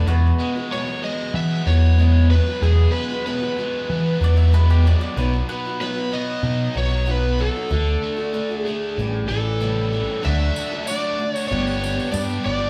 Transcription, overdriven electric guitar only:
\new Staff \with { instrumentName = "Overdriven electric guitar" } { \time 4/4 \key e \major \tempo 4 = 94 e,8 gis8 fis8 gis8 b8 fis8 gis8 fis8 | e,8 gis8 fis8 gis8 b8 fis8 gis8 fis8 | b,8 b8 fis8 b8 dis'8 fis8 b8 fis8 | d8 a8 d8 a8 a,8 e8 g8 e8 |
\key d \lydian <d fis a d' fis'>16 <a d' fis'>16 <fis a d' fis'>8 <d fis a d' fis'>8. <a d' fis'>16 <g, d g b d' g'>16 <g b d' g'>16 <g b d' g'>8 <g, d g b d' g'>16 <g b d' g'>16 <g b d' g'>16 <g b d' g'>16 | }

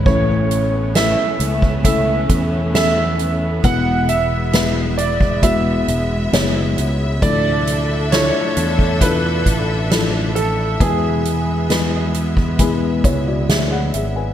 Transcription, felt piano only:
\new Staff \with { instrumentName = "Felt piano" } { \time 4/4 \key e \mixolydian \tempo 4 = 67 << { <a, e>4. r2 r8 | b,4. r2 r8 | a,4. r2 r8 | b,4. r4 <e' cis''>16 <fis' d''>16 <gis' e''>16 fis''16 <gis' e''>16 <b' gis''>16 | } \\ { <a cis' e' b'>4 <a cis' e' b'>4 <a cis' e' a'>4 <a cis' e' a'>4 | <gis b e' b'>4 <gis b e' b'>4 <gis b e' fis'>4 <gis b e' cis''>4 | <f d' e' a'>4 <d' e' f' a'>4 <d' e' f' a'>4 <f d' e' a'>4 | <gis b e' b'>4 <gis b e' b'>4 <gis b e' gis'>4 r4 | } >> }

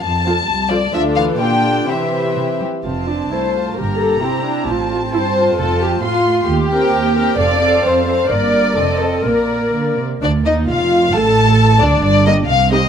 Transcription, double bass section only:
\new Staff \with { instrumentName = "Double bass section" } { \clef bass \time 2/4 \key f \mixolydian \tempo 4 = 132 r2 | \key f \major r2 | r2 | f,,4 r4 |
g,,4 r4 | a,,4 r4 | f,,4 r4 | \key d \phrygian ees,4 r4 |
f,,4 r4 | g,,4 f,,4 | bes,,4 r4 | d,8 ees,8 f,,4 |
a,,4. d,8 | g,,4 c,4 | }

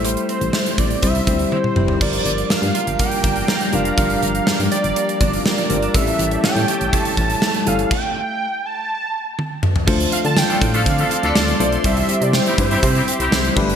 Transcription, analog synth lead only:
\new Staff \with { instrumentName = "Analog synth lead" } { \time 4/4 \key a \phrygian \tempo 4 = 122 c''8 c''4 d''8 e''4 c''4 | d''4 f''4 g''4. f''8 | f''4. d''4. d''4 | e''4 g''4 a''4. f''8 |
g''4. a''2 r8 | \key d \minor r8 f''16 a''16 g''8. f''4 d''8. d''8 | e''8. d''16 c''8 c''4 r4. | }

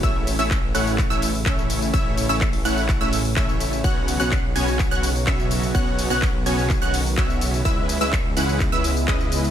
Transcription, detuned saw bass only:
\new Staff \with { instrumentName = "Detuned saw bass" } { \clef bass \time 4/4 \key b \mixolydian \tempo 4 = 126 a,,8. a,,8. a,,8. a,,8. a,,4 | a,,8. a,,8. a,,8. a,,8. a,,4 | b,,8. b,,8. b,,8. b,,8. b,,4 | b,,8. b,,8. b,,8. b,,8. b,,4 |
cis,8. cis,8. cis,8. cis,8. cis,4 | }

